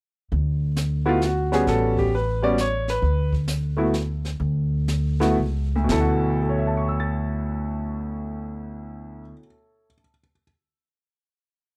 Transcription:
0.32 1.62 D2 medium
0.32 brush sweep soft
0.32 kick soft
0.76 snare medium
0.76 hi-hat pedal medium
1.06 1.19 A3 medium
1.06 1.19 B3 medium
1.06 1.20 E4 medium
1.06 1.22 F4 medium
1.06 1.19 F#4 medium
1.22 1.52 F#4 medium
1.22 snare medium
1.22 hi-hat pedal soft
1.52 2.08 G3 medium
1.52 2.08 B3 medium
1.52 2.09 C#4 medium
1.52 2.09 F#4 medium
1.52 1.67 G#4 medium
1.52 snare soft
1.67 2.97 A1 medium
1.67 1.96 A4 medium
1.67 brush sweep soft
1.67 kick soft
1.67 snare soft
1.97 2.12 G4 medium
1.97 kick soft
2.15 2.42 B4 medium
2.42 2.55 G3 medium
2.42 2.56 B3 medium
2.42 2.56 C#4 medium
2.42 2.56 F#4 medium
2.42 2.57 D5 medium
2.58 2.88 C#5 medium
2.58 snare medium
2.58 hi-hat pedal medium
2.88 3.30 B4 medium
2.88 snare soft
3.02 4.35 D2 medium
3.02 brush sweep soft
3.02 kick soft
3.33 kick soft
3.48 snare medium
3.48 hi-hat pedal medium
3.77 3.90 A3 medium
3.77 3.91 B3 soft
3.77 3.91 E4 medium
3.77 3.91 F#4 medium
3.94 snare medium
3.94 hi-hat pedal soft
4.25 snare soft
4.40 5.33 D2 medium
4.40 brush sweep soft
4.40 kick soft
4.88 snare medium
4.88 hi-hat pedal medium
5.20 5.35 A3 medium
5.20 5.35 B3 medium
5.20 5.35 E4 medium
5.20 5.36 F#4 medium
5.20 snare soft
5.37 5.85 C#2 medium
5.76 9.22 D2 medium
5.84 9.31 B2 medium
5.89 9.32 D2 medium
5.89 9.38 E4 soft
5.89 6.41 A4 medium
5.89 kick medium
5.89 snare medium
6.00 9.47 F#4 medium
6.42 9.85 A4 soft
6.49 9.92 C#5 soft
6.58 10.01 E5 soft
6.67 10.10 A5 soft
6.77 10.20 C#6 soft
6.88 10.31 E6 soft
7.00 10.42 A6 soft

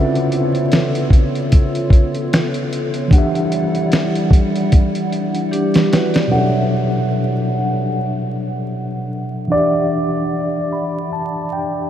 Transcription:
0.00 3.05 C#3 medium
0.00 3.08 B3 medium
0.00 3.06 C#4 medium
0.00 3.07 F4 medium
0.00 3.08 F4 medium
0.00 3.08 A4 medium
0.00 3.09 B4 medium
0.00 3.08 C#5 medium
0.00 3.10 E5 medium
0.15 closed hi-hat soft
0.32 closed hi-hat medium
0.55 closed hi-hat soft
0.72 finger snap medium
0.72 snare loud
0.72 closed hi-hat medium
0.95 closed hi-hat medium
1.10 kick medium
1.10 closed hi-hat medium
1.35 closed hi-hat soft
1.52 kick medium
1.52 closed hi-hat medium
1.75 closed hi-hat soft
1.90 kick medium
1.90 closed hi-hat medium
2.15 closed hi-hat soft
2.33 finger snap medium
2.33 snare loud
2.33 closed hi-hat medium
2.54 closed hi-hat medium
2.73 closed hi-hat medium
2.94 closed hi-hat medium
3.08 6.26 E3 medium
3.08 6.28 G3 medium
3.08 6.27 D4 medium
3.08 6.28 E4 medium
3.08 6.28 D5 medium
3.08 6.28 F#5 medium
3.08 kick loud
3.13 6.29 G4 medium
3.13 6.28 F#5 medium
3.13 closed hi-hat medium
3.18 6.31 E5 medium
3.35 closed hi-hat soft
3.52 closed hi-hat medium
3.75 closed hi-hat soft
3.92 finger snap medium
3.92 snare loud
3.92 closed hi-hat medium
4.15 closed hi-hat soft
4.31 kick medium
4.31 closed hi-hat medium
4.56 closed hi-hat soft
4.72 kick medium
4.72 closed hi-hat loud
4.95 closed hi-hat soft
5.12 closed hi-hat medium
5.35 closed hi-hat soft
5.51 5.90 D4 medium
5.51 5.89 G4 medium
5.51 closed hi-hat medium
5.74 snare medium
5.74 closed hi-hat medium
5.91 6.13 F#4 medium
5.91 6.13 B4 medium
5.91 snare medium
5.91 closed hi-hat medium
6.13 6.52 G4 medium
6.13 6.51 D5 medium
6.13 snare medium
6.13 closed hi-hat medium
6.27 9.45 B2 soft
6.27 9.46 F#3 medium
6.27 6.39 C#4 soft
6.32 9.48 A4 medium
6.32 9.49 C#5 soft
6.32 9.47 F#5 medium
6.38 9.49 D4 soft
6.38 9.50 E5 medium
9.48 11.85 E3 medium
9.48 11.87 D4 medium
9.52 11.89 G4 medium
9.52 11.90 D5 medium
9.52 11.88 F#5 soft
9.58 11.90 E5 medium
10.73 11.09 B5 medium
11.13 11.49 A5 medium
11.53 11.89 G5 medium

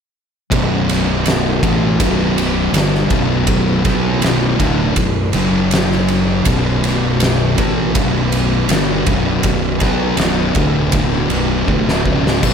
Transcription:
0.50 1.59 B0 medium
0.50 1.61 B1 loud
0.50 1.62 F#2 medium
0.50 1.62 B2 loud
0.50 5.32 B3 medium
0.50 3.47 F#4 medium
0.50 5.31 B4 medium
0.50 kick loud
0.50 ride loud
0.89 snare soft
0.89 ride medium
1.26 snare loud
1.26 ride medium
1.62 1.98 A1 medium
1.62 1.98 A2 medium
1.62 1.99 E3 medium
1.62 1.99 A3 loud
1.62 kick loud
1.62 ride medium
1.99 2.71 B0 loud
1.99 2.73 B1 medium
1.99 2.73 F#2 medium
1.99 2.73 B2 medium
1.99 kick loud
1.99 ride loud
2.38 ride medium
2.72 3.08 G1 loud
2.72 3.10 G2 medium
2.72 3.10 D3 loud
2.72 3.10 G3 loud
2.72 ride loud
2.77 snare loud
2.95 snare soft
3.10 3.81 B0 medium
3.10 3.85 B1 medium
3.10 3.83 F#2 loud
3.10 3.83 B2 loud
3.10 kick loud
3.10 ride medium
3.47 5.33 E4 medium
3.47 kick loud
3.47 ride loud
3.84 4.20 B1 loud
3.84 4.21 B2 medium
3.84 4.21 F#3 medium
3.84 4.22 B3 loud
3.84 kick loud
3.84 snare soft
3.84 ride medium
4.22 4.57 B0 loud
4.22 4.59 B1 medium
4.22 4.59 F#2 loud
4.22 4.59 B2 loud
4.22 snare loud
4.22 ride loud
4.59 4.95 D1 loud
4.59 4.96 D2 loud
4.59 4.96 A2 medium
4.59 4.96 D3 loud
4.59 kick loud
4.59 ride medium
4.96 5.32 B0 medium
4.96 5.27 B1 medium
4.96 5.27 F#2 medium
4.96 kick medium
4.96 ride loud
5.33 6.42 F#1 loud
5.33 6.45 F#2 medium
5.33 6.46 C#3 medium
5.33 6.46 F#3 medium
5.33 6.46 C#4 medium
5.33 6.45 F#4 medium
5.33 ride medium
5.71 snare loud
5.71 ride medium
5.92 snare soft
6.08 ride medium
6.45 7.54 B0 loud
6.45 7.56 B1 medium
6.45 7.57 F#2 loud
6.45 7.57 B2 loud
6.45 12.54 B3 medium
6.45 12.54 F#4 medium
6.45 12.54 B4 medium
6.45 kick loud
6.45 ride loud
6.84 snare soft
6.84 ride medium
7.20 snare loud
7.20 ride medium
7.57 7.93 A1 loud
7.57 7.94 A2 loud
7.57 7.94 E3 loud
7.57 7.95 A3 loud
7.57 kick loud
7.57 ride medium
7.94 8.66 B0 loud
7.94 8.68 B1 loud
7.94 8.69 F#2 medium
7.94 8.69 B2 medium
7.94 kick loud
7.94 ride loud
8.32 ride medium
8.69 9.04 G1 loud
8.69 9.05 G2 medium
8.69 9.06 D3 loud
8.69 9.06 G3 medium
8.69 snare loud
8.69 ride loud
9.06 9.78 B0 medium
9.06 9.80 B1 loud
9.06 9.80 F#2 loud
9.06 9.80 B2 loud
9.06 kick loud
9.06 ride medium
9.43 kick loud
9.43 ride loud
9.80 10.16 B1 medium
9.80 10.17 B2 medium
9.80 10.18 F#3 medium
9.80 10.18 B3 medium
9.80 kick loud
9.80 snare soft
9.80 ride medium
10.17 10.53 B0 loud
10.17 10.54 B1 medium
10.17 10.55 F#2 medium
10.17 10.55 B2 loud
10.17 snare loud
10.17 ride medium
10.55 10.90 D1 medium
10.55 10.90 D2 medium
10.55 10.91 A2 loud
10.55 10.92 D3 loud
10.55 kick loud
10.55 ride medium
10.91 11.28 D1 loud
10.91 11.29 D2 medium
10.91 11.29 A2 loud
10.91 11.30 D3 loud
10.91 kick loud
10.91 ride loud
11.30 11.65 B0 loud
11.30 11.66 B1 medium
11.30 11.67 F#2 medium
11.30 11.67 B2 loud
11.30 ride medium
11.67 12.02 D1 loud
11.67 12.04 D2 medium
11.67 12.04 A2 medium
11.67 12.05 D3 medium
11.67 kick medium
11.89 snare medium
12.05 12.40 C#1 loud
12.05 12.41 C#2 medium
12.05 12.41 G#2 loud
12.05 12.42 C#3 loud
12.05 kick medium
12.27 snare loud
12.41 12.54 B0 medium
12.41 12.54 B1 medium
12.41 12.54 F#2 loud
12.41 12.54 B2 loud
12.41 kick loud
12.41 crash loud

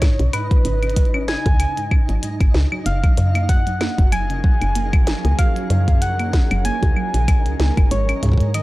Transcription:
0.00 0.15 G#2 medium
0.00 8.63 D#4 medium
0.00 0.35 C#5 loud
0.00 8.63 D#5 medium
0.00 kick loud
0.00 snare loud
0.00 closed hi-hat medium
0.00 claves medium
0.19 0.28 B1 loud
0.19 0.30 C#3 medium
0.19 closed hi-hat soft
0.33 0.47 G#2 medium
0.33 1.30 B4 loud
0.33 closed hi-hat medium
0.33 claves medium
0.51 0.62 F3 medium
0.51 kick loud
0.51 closed hi-hat soft
0.65 1.36 G#1 loud
0.65 0.79 C#3 medium
0.65 closed hi-hat medium
0.83 0.96 C#3 medium
0.83 closed hi-hat soft
0.83 claves medium
0.90 closed hi-hat soft
0.96 1.13 F#3 medium
0.96 kick loud
0.96 closed hi-hat loud
1.05 closed hi-hat soft
1.14 1.27 C#4 loud
1.14 claves medium
1.28 1.36 C#3 medium
1.28 2.54 G#5 loud
1.28 snare loud
1.28 closed hi-hat soft
1.46 1.65 C#2 loud
1.46 1.57 G#2 medium
1.46 kick loud
1.46 closed hi-hat soft
1.60 1.73 C#3 medium
1.60 closed hi-hat medium
1.60 claves medium
1.77 1.88 G#2 medium
1.77 closed hi-hat soft
1.91 1.99 C#2 medium
1.91 kick loud
1.91 claves medium
2.09 2.18 G#1 medium
2.09 2.15 F#3 medium
2.09 closed hi-hat soft
2.23 2.40 G#2 medium
2.23 closed hi-hat medium
2.40 2.49 G#1 medium
2.40 2.51 C#2 medium
2.40 kick loud
2.40 closed hi-hat soft
2.40 claves soft
2.54 2.66 C#2 loud
2.54 2.68 C#3 loud
2.54 snare loud
2.72 2.85 F#3 medium
2.72 claves medium
2.86 3.08 F#1 loud
2.86 3.00 C#3 medium
2.86 7.87 F3 medium
2.86 7.87 F#3 medium
2.86 7.87 C#4 medium
2.86 7.87 G#4 medium
2.86 8.63 A#4 medium
2.86 3.51 F5 loud
2.86 closed hi-hat medium
3.04 3.14 F#3 medium
3.04 kick loud
3.04 closed hi-hat soft
3.04 claves soft
3.18 3.88 F#2 medium
3.18 3.31 C#3 medium
3.18 closed hi-hat medium
3.35 3.46 A#3 medium
3.35 closed hi-hat soft
3.35 claves medium
3.49 3.63 F#3 medium
3.49 4.12 F#5 loud
3.49 kick loud
3.49 closed hi-hat medium
3.67 3.80 F#3 medium
3.67 closed hi-hat soft
3.81 3.98 A#3 medium
3.81 snare loud
3.81 closed hi-hat soft
3.81 claves soft
3.98 4.52 F#1 loud
3.98 4.12 F#4 loud
3.98 kick loud
3.98 closed hi-hat soft
4.12 4.21 F#3 medium
4.12 5.40 G#5 loud
4.12 closed hi-hat medium
4.12 claves medium
4.30 4.41 C#3 medium
4.30 closed hi-hat soft
4.44 4.58 F#3 medium
4.44 kick loud
4.62 5.15 F#1 medium
4.62 4.72 C#3 medium
4.62 closed hi-hat soft
4.62 claves medium
4.75 4.89 A#3 medium
4.75 closed hi-hat medium
4.93 5.04 F#3 medium
4.93 kick loud
4.93 closed hi-hat soft
4.93 claves medium
5.07 5.24 F#3 medium
5.07 snare loud
5.07 closed hi-hat medium
5.25 5.34 C#2 loud
5.25 5.38 A#3 medium
5.25 closed hi-hat soft
5.39 5.55 F#4 loud
5.39 6.03 F5 loud
5.39 kick loud
5.39 closed hi-hat medium
5.39 claves medium
5.56 5.63 F#3 medium
5.56 closed hi-hat soft
5.70 6.41 F#2 loud
5.70 5.84 C#3 medium
5.70 closed hi-hat medium
5.88 5.99 F#3 medium
5.88 kick loud
5.88 closed hi-hat soft
6.02 6.15 C#3 medium
6.02 6.67 F#5 loud
6.02 closed hi-hat medium
6.19 6.30 A#3 medium
6.19 closed hi-hat soft
6.19 claves medium
6.33 6.47 F#3 medium
6.33 kick loud
6.33 snare loud
6.33 closed hi-hat soft
6.51 6.70 F#1 loud
6.51 6.64 F#3 medium
6.51 closed hi-hat soft
6.51 claves medium
6.65 6.82 A#3 medium
6.65 7.91 G#5 loud
6.65 closed hi-hat medium
6.83 6.92 C#2 loud
6.83 6.96 F#4 loud
6.83 kick loud
6.83 closed hi-hat soft
6.97 7.05 F#3 medium
6.97 claves medium
7.14 7.47 A#1 loud
7.14 7.25 C#3 medium
7.14 closed hi-hat medium
7.28 7.42 F#3 medium
7.28 kick loud
7.28 closed hi-hat medium
7.28 claves medium
7.46 7.55 C#2 medium
7.46 7.56 C#3 medium
7.46 closed hi-hat soft
7.60 7.71 C#2 medium
7.60 7.73 A#3 medium
7.60 snare loud
7.60 closed hi-hat medium
7.77 7.86 F#1 medium
7.77 7.88 F#3 medium
7.77 kick loud
7.77 closed hi-hat soft
7.77 claves medium
7.91 8.13 G#1 loud
7.91 8.63 G#3 medium
7.91 8.08 G#3 medium
7.91 8.63 D#4 medium
7.91 8.63 F#4 medium
7.91 8.63 C#5 medium
7.91 8.51 C#5 loud
7.91 closed hi-hat medium
8.09 8.22 C#4 medium
8.09 closed hi-hat soft
8.09 claves medium
8.23 8.63 G#2 medium
8.23 8.40 G#4 loud
8.23 kick soft
8.23 closed hi-hat medium
8.26 kick medium
8.29 kick medium
8.32 kick medium
8.33 kick medium
8.38 8.47 G#3 medium
8.38 kick medium
8.38 closed hi-hat soft
8.54 8.63 D#3 medium
8.54 8.63 D#5 loud
8.54 closed hi-hat medium
8.54 claves medium

